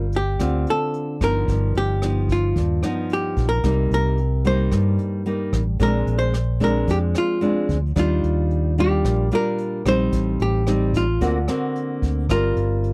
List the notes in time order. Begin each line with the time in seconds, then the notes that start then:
Already playing: G1 G3 F4
0.12 G4, closed hi-hat
0.39 D2 D3 C4 F4, kick, cross-stick, closed hi-hat
0.67 A4, closed hi-hat
0.94 closed hi-hat
1.21 G1 F3 B3 D#4 A#4, kick, cross-stick, closed hi-hat
1.48 G1 G2, kick, closed hi-hat
1.75 G1 G4, closed hi-hat
2.02 F3 B3 D#4, cross-stick, closed hi-hat
2.29 F4, kick, closed hi-hat
2.56 D#2 G2, kick, closed hi-hat
2.83 F3 B3 D#4, cross-stick, closed hi-hat
3.10 G4, closed hi-hat
3.37 A#1, kick, closed hi-hat
3.49 A#4
3.64 C2 C3 G3 A#3 D#4, kick, cross-stick, closed hi-hat
3.91 C2 A#4, closed hi-hat
4.18 closed hi-hat
4.45 G3 A#3 D#4 C5, closed hi-hat
4.72 G2, kick, cross-stick, closed hi-hat
4.98 closed hi-hat
5.26 G3 A#3 D#4, closed hi-hat
5.53 A1, kick, cross-stick, closed hi-hat
5.79 A#1 A#2 G#3 C4 D4 A#4, kick, closed hi-hat
6.07 A#1, closed hi-hat
6.19 C5
6.34 cross-stick, closed hi-hat
6.60 G#3 C4 D4 A#4, kick, closed hi-hat
6.87 F2 F3 G4, kick, closed hi-hat
7.15 F4, cross-stick, closed hi-hat
7.41 G#3 C4 D4, closed hi-hat
7.69 D2, kick, closed hi-hat
7.96 D#2 D#3 G3 D4 F4, kick, cross-stick, closed hi-hat
8.23 D#2, closed hi-hat
8.51 closed hi-hat
8.78 G3 D4 F4 G4, closed hi-hat
9.04 A#1 A#2, kick, cross-stick, closed hi-hat
9.31 G3 D4 F4 A#4, closed hi-hat
9.58 closed hi-hat
9.85 A#1 G3 C4 D#4 C5, kick, cross-stick, closed hi-hat
10.12 A1 A2, kick, closed hi-hat
10.40 A1 G4, closed hi-hat
10.67 G3 C4 D#4, cross-stick, closed hi-hat
10.94 F4, kick, closed hi-hat
11.21 D2 D3 A#3 C4 F#4, kick, closed hi-hat
11.48 A#3 C4 F#4, cross-stick, closed hi-hat
11.76 closed hi-hat
12.02 D2, kick, closed hi-hat
12.29 G1 G3 C4 F4 A#4, kick, cross-stick, closed hi-hat
12.56 G1, closed hi-hat
12.84 closed hi-hat